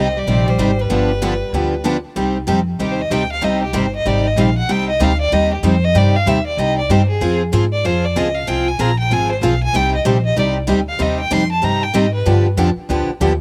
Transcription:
Already playing: upright bass C2, steel-string acoustic guitar C4
0.00 violin D#5
0.17 steel-string acoustic guitar G3, violin D5
0.27 upright bass A#1, steel-string acoustic guitar C3 G3 C4 D#4 G4
0.48 steel-string acoustic guitar G3, violin C5
0.58 upright bass G#1, steel-string acoustic guitar C3 G3 C4 D#4 G4
0.79 steel-string acoustic guitar G3, violin B4
0.90 upright bass G1, steel-string acoustic guitar D3 F3 B3 D4 G4
1.22 steel-string acoustic guitar D3 F3 B3 D4 G4
1.52 upright bass D2, steel-string acoustic guitar D3 F3 B3 D4 G4
1.84 steel-string acoustic guitar D3 F3 B3 D4 G4
2.16 upright bass C2, steel-string acoustic guitar C3 G3 C4 D#4 G4
2.47 upright bass F2, steel-string acoustic guitar C3 G3 C4 D#4 G4
2.79 upright bass D#2, steel-string acoustic guitar C3 G3 C4 D#4 G4, violin G4
2.92 violin C5
3.01 violin D#5
3.10 upright bass D2, steel-string acoustic guitar C3 G3 C4 D#4 G4, violin G5
3.32 violin F5
3.41 upright bass C2, steel-string acoustic guitar C3 G3 C4 D#4 G4, violin D#5
3.64 violin G4
3.73 upright bass G1, steel-string acoustic guitar C3 G3 C4 D#4 G4
3.77 violin C5
3.96 violin D#5
4.05 upright bass G#1, steel-string acoustic guitar C3 G3 C4 D#4 G4, violin D5
4.27 violin D#5
4.36 upright bass A#1, steel-string acoustic guitar C3 G3 C4 D#4 G4
4.40 violin F5
4.58 violin F#5
4.68 upright bass C2, steel-string acoustic guitar C3 G3 C4 D#4 G4, violin G5
4.89 violin D#5
5.00 upright bass D2, steel-string acoustic guitar C3 G3 C4 D#4 G4, violin F5
5.21 violin D5
5.32 upright bass D#2, steel-string acoustic guitar C3 G3 C4 D#4 G4, violin D#5
5.54 violin G4
5.63 upright bass F2, steel-string acoustic guitar C3 G3 C4 D#4 G4
5.67 violin C5
5.84 violin D#5
5.95 upright bass G2, steel-string acoustic guitar C3 G3 C4 D#4 G4, violin D5
6.16 violin F5
6.26 upright bass D#2, steel-string acoustic guitar C3 G3 C4 D#4 G4, violin E5
6.47 violin D5
6.57 upright bass C2, steel-string acoustic guitar C3 G3 C4 D#4 G4, violin D#5
6.79 violin D5
6.89 upright bass G2, steel-string acoustic guitar C3 G3 C4 D#4 G4, violin C5
7.09 violin G#4
7.21 upright bass F2, steel-string acoustic guitar F3 C4 F4 G#4
7.53 upright bass G#2, steel-string acoustic guitar F3 C4 F4 G#4
7.73 violin D5
7.85 upright bass F2, steel-string acoustic guitar F3 C4 F4 G#4, violin C5
8.05 violin D5
8.16 upright bass C#2, steel-string acoustic guitar F3 C4 F4 G#4, violin D#5
8.35 violin F5
8.47 upright bass C2, steel-string acoustic guitar F3 C4 F4 G#4, violin G5
8.68 violin G#5
8.79 upright bass A#1, steel-string acoustic guitar F3 C4 F4 G#4, violin A#5
8.99 violin G5
9.10 upright bass G#1, steel-string acoustic guitar F3 C4 F4 G#4, violin G#5
9.31 violin C5
9.41 upright bass B1, steel-string acoustic guitar F3 C4 F4 G#4, violin F5
9.63 violin G#5
9.73 upright bass C2, steel-string acoustic guitar C3 G3 C4 D#4 G4, violin G5
9.95 violin D#5
10.05 upright bass A#1, steel-string acoustic guitar C3 G3 C4 D#4 G4, violin C5
10.26 violin D#5
10.36 upright bass C2, steel-string acoustic guitar C3 G3 C4 D#4 G4, violin D5
10.67 upright bass D2, steel-string acoustic guitar C3 G3 C4 D#4 G4
10.89 violin F5
10.99 upright bass D#2, steel-string acoustic guitar C3 G3 C4 D#4 G4, violin D#5
11.20 violin G5
11.31 upright bass F2, steel-string acoustic guitar C3 G3 C4 D#4 G4, violin C6
11.52 violin A5
11.62 upright bass G2, steel-string acoustic guitar C3 G3 C4 D#4 G4, violin A#5
11.83 violin G5
11.94 upright bass G#2, steel-string acoustic guitar C3 G3 C4 D#4 G4, violin D#5
12.14 violin B4
12.26 upright bass G2, steel-string acoustic guitar D3 F3 B3 D4 G4
12.57 upright bass F2, steel-string acoustic guitar D3 F3 B3 D4 G4
12.76 muted upright bass stroke
12.89 upright bass D2, steel-string acoustic guitar D3 F3 B3 D4 G4
13.08 muted upright bass stroke
13.20 upright bass D#2, steel-string acoustic guitar D3 F3 B3 D4 G4

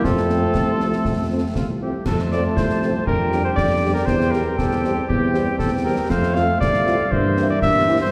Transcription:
0.03 tuba F2, trombone section F3 A3, euphonium C4, woodwind section F4, cornet A4, concert bass drum, snare
0.17 snare
0.29 french horn section F3 A3 C4, snare
0.54 tuba C2, concert bass drum, snare
0.80 french horn section F3 A3 C4, snare
0.93 snare
1.05 tuba F2, concert bass drum, snare
1.32 french horn section F3 A3 C4
1.55 tuba C2, cornet F4, concert bass drum, snare
1.81 french horn section F3 A3 C4, cornet G4
2.06 tuba F2, trombone section F3 A3, woodwind section F4 A5, cornet A4, concert bass drum, snare, crash
2.19 snare
2.32 french horn section F3 A3 C4, cornet D5, snare
2.56 tuba C2, cornet C5, concert bass drum, snare
2.69 snare
2.82 french horn section F3 A3 C4, snare
3.06 tuba F2, trombone section G3 D4, woodwind section G4 G5, cornet A#4, concert bass drum
3.32 french horn section G3 D4 G4, snare
3.44 cornet C5
3.56 tuba F2, cornet D5, concert bass drum, snare
3.83 french horn section G3 D4 G4
3.94 cornet A#4
4.06 tuba E2, trombone section G3 C4, woodwind section G4 G5, cornet C5, concert bass drum, snare
4.21 snare
4.32 french horn section G3 C4 G4, cornet A#4, snare
4.57 tuba E2, cornet A4, concert bass drum, snare
4.71 snare
4.84 french horn section G3 C4 G4, snare
5.08 tuba E2, cornet G4, concert bass drum
5.34 french horn section G3 C4 G4, snare
5.59 tuba E2, cornet A4, concert bass drum, snare
5.84 french horn section G3 C4 G4, cornet A#4
6.09 tuba F2, trombone section F3 A3, woodwind section A4 F5, cornet C5, concert bass drum, snare, crash
6.23 snare
6.35 french horn section A3 C4 F4, cornet F5, snare
6.60 tuba C2, cornet D5, concert bass drum, snare
6.73 snare
6.86 french horn section A3 C4 F4, snare
7.10 tuba G2, trombone section E3 A#3, woodwind section A#4 E5, cornet C5, concert bass drum
7.37 french horn section A#3 C4 E4, snare
7.50 cornet D5
7.62 tuba G2, cornet E5, concert bass drum, snare
7.87 french horn section A#3 C4 E4
8.01 cornet C5

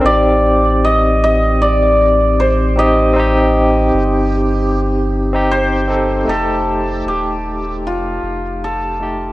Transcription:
0.01 sub bass A1, tine electric piano C4 D#4
0.05 synth texture G4, tine electric piano G4, hammered dulcimer D5
0.84 hammered dulcimer D#5
1.24 hammered dulcimer D#5
1.62 hammered dulcimer D5
2.40 hammered dulcimer C5
2.76 tine electric piano C4 D#4 G4, hammered dulcimer D#5
3.13 tine electric piano C4 D#4
3.19 tine electric piano G4
3.94 sub bass G1
5.33 tine electric piano C4 D#4 G4
5.51 hammered dulcimer C5
5.87 tine electric piano C4 D#4 A4
6.25 sub bass F1, tine electric piano A3 D#4
6.29 tine electric piano G4, hammered dulcimer A4
7.05 sub bass D#1, hammered dulcimer G4
7.84 sub bass F1, hammered dulcimer F4
8.23 sub bass F1
8.64 hammered dulcimer A4
9.00 tine electric piano A3 D#4 G4

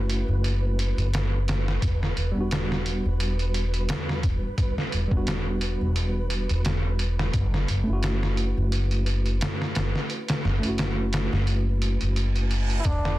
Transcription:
Already playing: upright bass F#1, tine electric piano A3 C#4 E4 F#4, synth texture B4
0.10 closed hi-hat
0.28 upright bass F#1
0.44 closed hi-hat
0.79 closed hi-hat
0.97 upright bass F#1, closed hi-hat
1.14 snare, closed hi-hat
1.48 snare, closed hi-hat
1.68 snare
1.82 upright bass E1, kick, closed hi-hat
2.03 snare
2.17 upright bass E1, closed hi-hat
2.32 tine electric piano G3 B3
2.36 upright bass E1, tine electric piano D4
2.40 tine electric piano F#4
2.51 snare, closed hi-hat
2.72 snare
2.86 closed hi-hat
3.05 upright bass E1
3.20 closed hi-hat
3.39 closed hi-hat
3.54 closed hi-hat
3.74 closed hi-hat
3.89 upright bass E2, snare, closed hi-hat
4.09 snare
4.23 upright bass E1, kick, closed hi-hat
4.58 kick, closed hi-hat
4.78 snare
4.92 upright bass E1, closed hi-hat
5.08 tine electric piano G3 B3, kick
5.12 upright bass E1, tine electric piano D4
5.17 tine electric piano F#4
5.27 snare, closed hi-hat
5.61 closed hi-hat
5.81 upright bass E1
5.96 closed hi-hat
6.30 closed hi-hat
6.49 upright bass E1, closed hi-hat
6.65 snare, closed hi-hat
6.99 closed hi-hat
7.19 snare
7.33 upright bass F#1, kick, closed hi-hat
7.54 snare
7.68 upright bass F#1, closed hi-hat
7.84 tine electric piano A3 C#4
7.88 upright bass F#1, tine electric piano E4
7.93 tine electric piano F#4
8.03 snare, closed hi-hat
8.23 snare
8.37 closed hi-hat
8.58 upright bass F#1
8.72 closed hi-hat
8.91 closed hi-hat
9.06 closed hi-hat
9.26 closed hi-hat
9.41 upright bass F#2, snare, closed hi-hat
9.62 snare
9.75 upright bass F#1, snare, closed hi-hat
9.96 snare
10.10 closed hi-hat
10.28 snare, closed hi-hat
10.44 upright bass F#1, snare
10.59 tine electric piano A3 C#4
10.63 upright bass F#1, tine electric piano E4, closed hi-hat
10.68 tine electric piano F#4
10.78 snare, closed hi-hat
11.13 snare, closed hi-hat
11.32 upright bass F#1, snare
11.47 closed hi-hat, reverse cymbal
11.82 closed hi-hat
12.01 upright bass F#1, closed hi-hat
12.16 closed hi-hat
12.36 closed hi-hat
12.51 closed hi-hat
12.70 closed hi-hat
12.80 muted trumpet E4
12.85 upright bass E1, muted trumpet D4, kick, closed hi-hat
13.05 snare

